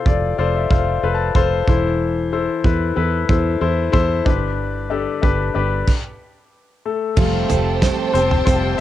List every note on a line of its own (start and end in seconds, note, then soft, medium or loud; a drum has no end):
0.00 1.69 C3 medium
0.00 0.06 F4 medium
0.00 0.07 A4 medium
0.00 0.39 C5 medium
0.06 0.32 F1 medium
0.06 0.36 F4 medium
0.06 0.36 A4 medium
0.06 0.36 D5 medium
0.06 kick medium
0.38 0.65 F1 medium
0.38 0.68 F4 medium
0.38 0.68 A4 medium
0.38 0.69 C5 medium
0.38 0.53 D5 medium
0.55 0.70 E5 medium
0.70 0.97 F1 medium
0.70 1.00 F4 medium
0.70 1.01 A4 medium
0.70 1.01 C5 medium
0.70 1.11 F5 medium
0.70 kick medium
1.03 1.30 F1 medium
1.03 1.33 F4 medium
1.03 1.33 A4 medium
1.03 1.33 B4 medium
1.14 1.34 A5 medium
1.35 1.62 F1 medium
1.35 1.65 F4 medium
1.35 1.66 A4 medium
1.35 1.66 C5 loud
1.35 1.96 C6 medium
1.35 kick medium
1.68 2.47 E1 medium
1.68 2.61 E3 medium
1.68 2.28 E4 medium
1.68 2.28 A4 medium
1.68 2.28 C5 medium
1.68 kick medium
2.32 2.62 E4 medium
2.32 2.63 A4 medium
2.32 2.63 C5 medium
2.65 2.91 E2 medium
2.65 2.95 E4 medium
2.65 2.95 A4 medium
2.65 2.95 B4 medium
2.65 kick medium
2.96 3.23 E2 medium
2.96 3.27 E4 medium
2.96 3.27 A4 medium
2.96 3.27 B4 medium
3.29 3.56 E2 medium
3.29 3.59 E4 medium
3.29 3.59 A4 medium
3.29 3.59 C5 medium
3.29 kick loud
3.61 3.88 E2 medium
3.61 3.91 E4 medium
3.61 3.91 A4 medium
3.61 3.91 C5 medium
3.92 4.20 E2 medium
3.92 4.23 E4 medium
3.92 4.23 A4 medium
3.92 4.24 C5 loud
3.92 kick medium
4.25 5.06 G1 medium
4.25 5.19 G2 medium
4.25 5.19 D3 medium
4.25 4.86 D4 medium
4.25 4.86 G4 medium
4.25 4.86 B4 medium
4.25 kick medium
4.90 5.20 D4 medium
4.90 5.21 G4 medium
4.90 5.21 A4 medium
5.22 5.50 G1 medium
5.22 5.53 D4 medium
5.22 5.53 G4 medium
5.22 5.53 B4 medium
5.22 kick medium
5.55 5.82 G1 medium
5.55 5.85 D4 medium
5.55 5.85 G4 medium
5.55 5.86 B4 medium
5.87 kick medium
5.87 crash medium
6.85 7.16 A3 medium
6.85 8.19 A4 medium
7.16 7.44 F1 medium
7.16 7.49 F3 medium
7.16 7.50 G3 medium
7.16 8.10 G3 soft
7.16 7.50 A3 medium
7.16 8.11 A3 soft
7.16 7.50 C4 medium
7.16 8.11 F4 medium
7.16 8.80 G4 medium
7.16 7.48 A4 medium
7.16 8.80 C5 medium
7.16 7.49 C5 medium
7.16 8.80 G5 medium
7.16 8.80 A5 medium
7.16 kick loud
7.16 crash medium
7.49 7.90 F1 medium
7.49 7.81 G3 soft
7.49 7.81 C4 soft
7.49 7.82 A4 medium
7.49 7.82 C5 soft
7.49 closed hi-hat medium
7.49 floor tom medium
7.82 8.14 F3 medium
7.82 8.15 G3 medium
7.82 8.14 A3 medium
7.82 8.14 C4 medium
7.82 8.12 A4 medium
7.82 8.14 C5 medium
7.82 kick medium
7.82 snare loud
7.82 closed hi-hat medium
8.13 8.41 F1 medium
8.13 8.45 G3 soft
8.13 8.45 C4 medium
8.13 8.46 C4 soft
8.13 8.46 A4 medium
8.13 8.44 C5 medium
8.13 8.47 C5 soft
8.13 closed hi-hat medium
8.31 floor tom medium
8.46 8.74 F1 medium
8.46 8.75 G3 soft
8.46 8.79 G3 medium
8.46 8.76 A3 soft
8.46 8.77 C4 medium
8.46 8.79 C4 medium
8.46 8.76 F4 soft
8.46 8.77 A4 medium
8.46 8.80 C5 medium
8.46 8.78 C5 medium
8.46 kick loud
8.46 closed hi-hat medium